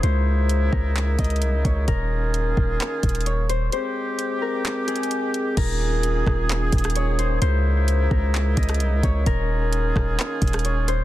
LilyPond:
<<
  \new Staff \with { instrumentName = "Harp" } { \time 4/4 \key ees \mixolydian \tempo 4 = 130 c''4. bes'4 ees''4 des''8 | bes'2. des''8 c''8 | c''4. bes'4 aes'8 r4 | bes'2. des''8 c''8 |
c''4. bes'4 ees''4 des''8 | bes'2. des''8 c''8 | }
  \new Staff \with { instrumentName = "Woodwind section" } { \time 4/4 \key ees \mixolydian << { <des ees' fes'>1 | <ees des' f' aes'>1 | <aes c' g'>1 | <ees des' f' aes'>1 |
<des ees' fes'>1 | <ees des' f' aes'>1 | } \\ { <aes bes>1~ | <aes bes>1 | r1 | bes1 |
aes1 | r1 | } >> }
  \new Staff \with { instrumentName = "808-style bass" } { \clef bass \time 4/4 \key ees \mixolydian des,4. des,4 des,8 c,16 des,16 des,8 | ees,,4. ees,,8 r8 ees,,4. | r1 | ees,,4. ees,,4 ees,,4. |
des,4. des,4 des,8 c,16 des,16 des,8 | ees,,4. ees,,8 r8 ees,,4. | }
  \new DrumStaff \with { instrumentName = "Drums" } \drummode { \time 4/4 hh4 hh8 bd8 <hc hh>8 <hh bd>32 hh32 hh32 hh32 hh8 <hh bd>8 | <hh bd>4 hh8 bd8 <hc hh>8 <hh bd>32 hh32 hh32 hh32 hh8 hh8 | hh4 hh4 \tuplet 3/2 { <hc hh>16 r16 r16 hh16 hh16 hh16 } hh8 hh8 | <cymc hh bd>4 hh8 <bd ss>8 <hc hh>8 <hh bd>32 hh32 <hh ss>32 hh32 hh8 hh8 |
hh4 hh8 bd8 <hc hh>8 <hh bd>32 hh32 <hh ss>32 hh32 hh8 <hh bd>8 | <hh bd>4 hh8 <bd ss>8 <hc hh>8 <hh bd>32 hh32 <hh ss>32 hh32 hh8 hh8 | }
>>